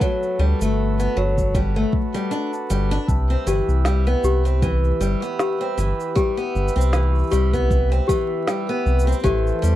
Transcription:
Already playing: accordion F#4 A4 B4
0.01 steel-string acoustic guitar F#3, kick, cabasa
0.23 cabasa
0.39 analog synth bass D2, steel-string acoustic guitar G3
0.61 analog synth bass G1, steel-string acoustic guitar A3, cabasa
1.00 steel-string acoustic guitar B3, cabasa
1.16 analog synth bass G1, steel-string acoustic guitar F#3
1.38 kick, cabasa
1.55 steel-string acoustic guitar G3, kick, cabasa
1.76 steel-string acoustic guitar A3
1.93 kick
2.14 steel-string acoustic guitar G3, cabasa
2.31 steel-string acoustic guitar D4, cabasa
2.53 cabasa
2.70 analog synth bass G1, steel-string acoustic guitar G3, cabasa
2.91 steel-string acoustic guitar D4, cabasa
3.08 analog synth bass C2, accordion G4 E5, kick, cabasa
3.30 steel-string acoustic guitar C4, cabasa
3.46 analog synth bass G1, steel-string acoustic guitar E3, toy piano G4, cabasa
3.68 analog synth bass C2, cabasa
3.85 steel-string acoustic guitar G3, snare, cabasa
4.07 steel-string acoustic guitar B3, cabasa
4.23 analog synth bass C2, toy piano G4, cabasa
4.45 steel-string acoustic guitar C4, cabasa
4.62 steel-string acoustic guitar E3, kick, cabasa
4.84 cabasa
5.00 analog synth bass G1, steel-string acoustic guitar G3, cabasa
5.22 steel-string acoustic guitar B3, cabasa
5.39 toy piano G4, snare, cabasa
5.61 steel-string acoustic guitar C4, cabasa
5.78 analog synth bass G1, steel-string acoustic guitar E3, cabasa
6.00 cabasa
6.15 steel-string acoustic guitar G3, toy piano G4, kick, cabasa
6.37 steel-string acoustic guitar B3, cabasa
6.55 analog synth bass G1, cabasa
6.68 cabasa
6.76 analog synth bass C2, steel-string acoustic guitar C4, cabasa
6.81 cabasa
6.93 steel-string acoustic guitar E3, snare, cabasa
7.15 cabasa
7.18 cabasa
7.23 cabasa
7.27 cabasa
7.30 analog synth bass C2, steel-string acoustic guitar G3, toy piano G4, cabasa
7.33 cabasa
7.53 steel-string acoustic guitar B3, kick, cabasa
7.70 kick, cabasa
7.92 steel-string acoustic guitar C4, cabasa
8.08 steel-string acoustic guitar E3, toy piano G4, kick, cabasa
8.47 steel-string acoustic guitar G3, snare, cabasa
8.69 steel-string acoustic guitar B3, cabasa
8.86 analog synth bass C2, cabasa
8.99 cabasa
9.07 steel-string acoustic guitar C4, cabasa
9.12 cabasa
9.19 cabasa
9.24 analog synth bass A1, steel-string acoustic guitar E3, accordion A3 A4 C5 G5, toy piano G4, kick, cabasa
9.47 cabasa
9.62 analog synth bass E2, steel-string acoustic guitar G3, cabasa

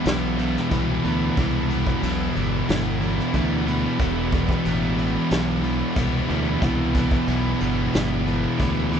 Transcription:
Already playing: distorted electric guitar E2 B2 E3
0.05 fingered electric bass B1, distorted electric guitar E3 G3 B3 E4, snare, ride
0.38 distorted electric guitar E2 B2 E3 G3 B3 E4, ride
0.57 snare
0.70 fingered electric bass C2, distorted electric guitar E2 B2 E3 G3 B3 E4, kick, ride
1.03 fingered electric bass D2, distorted electric guitar E2 B2 E3 G3 B3 E4, ride
1.36 fingered electric bass C2, distorted electric guitar E2 B2 E3 G3 B3 E4, kick, ride
1.69 distorted electric guitar E3 G3 B3 E4, ride
1.86 kick
2.01 fingered electric bass B1, distorted electric guitar E3 G3 B3 E4, ride
2.34 fingered electric bass G1, distorted electric guitar E3 G3 B3 E4, ride
2.67 fingered electric bass G1, distorted electric guitar E3 G3 B3 E4, snare, ride
3.00 distorted electric guitar E2 B2 E3 G3 B3 E4, ride
3.20 snare
3.33 fingered electric bass D2, distorted electric guitar E2 B2 E3 G3 B3 E4, kick, ride
3.66 distorted electric guitar E2 B2 E3 G3 B3 E4, ride
3.98 fingered electric bass E1, distorted electric guitar E2 B2 E3 G3 B3 E4, kick, crash
4.31 distorted electric guitar E3 G3 B3 E4, kick, ride
4.49 kick
4.65 fingered electric bass A1, distorted electric guitar E3 G3 B3 E4, ride
4.97 distorted electric guitar E3 G3 B3 E4, ride
5.30 fingered electric bass B1, distorted electric guitar E3 G3 B3 E4, snare, ride
5.62 distorted electric guitar E2 B2 E3 G3 B3 E4, ride
5.96 fingered electric bass C2, distorted electric guitar E2 B2 E3 G3 B3 E4, kick, ride
6.28 fingered electric bass D2, distorted electric guitar E2 B2 E3 G3 B3 E4, ride
6.61 fingered electric bass C2, distorted electric guitar E2 B2 E3 G3 B3 E4, kick, ride
6.94 distorted electric guitar E3 G3 B3 E4, kick, ride
7.11 kick
7.27 fingered electric bass B1, distorted electric guitar E3 G3 B3 E4, ride
7.60 fingered electric bass G1, distorted electric guitar E3 G3 B3 E4, ride
7.92 fingered electric bass G1, distorted electric guitar E3 G3 B3 E4, snare, ride
8.26 distorted electric guitar E2 B2 E3 G3 B3 E4, ride
8.59 fingered electric bass D2, distorted electric guitar E2 B2 E3 G3 B3 E4, kick, ride
8.92 distorted electric guitar E2 B2 E3 G3 B3 E4, ride

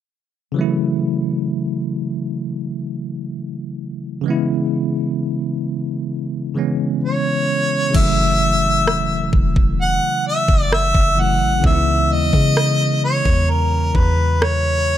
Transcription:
0.52 tine electric piano C#3 E3
0.56 tine electric piano F#3 A3
0.61 tine electric piano E4
4.21 tine electric piano C#3 E3
4.26 tine electric piano G#3 B3
4.30 tine electric piano E4
6.54 tine electric piano C#3 E3 G#3 B3
6.59 tine electric piano C#4
7.04 harmonica C#5
7.90 tine electric piano C#3 E3
7.94 808-style bass F#1, tine electric piano F#3 G#3, harmonica E5, kick, crash
7.99 tine electric piano E4
8.04 tine electric piano A3
8.87 808-style bass E1, cross-stick
9.33 808-style bass E1, kick
9.56 kick
9.81 harmonica F#5
10.27 harmonica E5
10.48 808-style bass F#1, kick
10.72 harmonica E5, cross-stick
10.94 808-style bass F#1, kick
11.16 tine electric piano C#3 E3 F#3 A3, harmonica F#5
11.20 tine electric piano E4
11.41 808-style bass A1
11.59 tine electric piano C#3 E3
11.64 808-style bass C#2, tine electric piano G#3 B3, harmonica E5, kick
11.69 tine electric piano D#4
11.75 tine electric piano E4
12.10 808-style bass D#2, harmonica D#5
12.33 808-style bass C#3, kick
12.57 cross-stick
13.04 harmonica C#5
13.25 808-style bass E2, kick
13.50 harmonica A#4
13.95 808-style bass E2, harmonica B4, kick
14.42 harmonica C#5, cross-stick

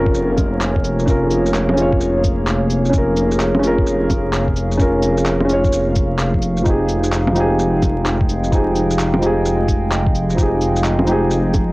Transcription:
Already playing: detuned saw bass F1, ambient pad A#3 G#4 C#5 F5, felt piano C#4 F4 A#4
0.06 kick
0.14 shaker
0.38 kick, low bongo, cabasa
0.61 clap, shaker
0.76 kick
0.85 cabasa
0.99 shaker
1.06 felt piano C#4 F4 A#4, kick, shaker
1.31 cabasa
1.46 shaker
1.54 clap, shaker
1.69 low bongo
1.73 felt piano C#4 F4, cabasa
1.81 felt piano C#5
1.92 kick
2.00 shaker
2.24 kick, cabasa
2.47 clap, shaker
2.70 cabasa
2.85 shaker
2.90 felt piano C#4, shaker
2.94 felt piano F4 A#4, kick
3.16 cabasa
3.31 shaker
3.40 clap, shaker
3.55 low bongo
3.59 felt piano C#4 F4
3.63 felt piano A#4, cabasa
3.78 kick
3.87 shaker
4.10 kick, low bongo, cabasa
4.33 clap, shaker
4.48 kick
4.56 cabasa
4.72 shaker
4.78 felt piano C#4 F4, kick, shaker
4.82 felt piano A#4
5.03 cabasa
5.17 shaker
5.26 clap, shaker
5.41 low bongo
5.45 felt piano C#4
5.49 felt piano F4 C#5, cabasa
5.64 kick, shaker
5.72 shaker
5.95 kick, cabasa
6.19 clap, shaker
6.34 kick
6.42 cabasa
6.57 shaker
6.62 felt piano F3 D#4
6.66 detuned saw bass F1, ambient pad G#3, felt piano G4, kick, shaker
6.70 felt piano G#4
6.89 cabasa
7.04 shaker
7.12 ambient pad G5, clap, shaker
7.27 low bongo
7.32 felt piano F3 D#4, cabasa
7.37 felt piano G4 G#4
7.59 shaker
7.69 ambient pad D#5
7.82 kick, low bongo, cabasa
8.06 clap, shaker
8.21 kick
8.29 cabasa
8.44 shaker
8.51 felt piano F3 D#4 G4 G#4, kick, shaker
8.76 cabasa
8.91 shaker
8.99 clap, shaker
9.14 low bongo
9.18 felt piano F3 D#4
9.22 felt piano G4 G#4, cabasa
9.45 shaker
9.69 kick, cabasa
9.92 clap, shaker
10.07 kick
10.15 cabasa
10.30 shaker
10.34 felt piano F3 D#4, kick, shaker
10.40 felt piano G4 G#4
10.61 cabasa
10.76 shaker
10.84 clap, shaker
10.99 low bongo
11.04 felt piano F3 D#4, cabasa
11.09 felt piano G4 G#4
11.31 shaker
11.54 kick, low bongo, cabasa

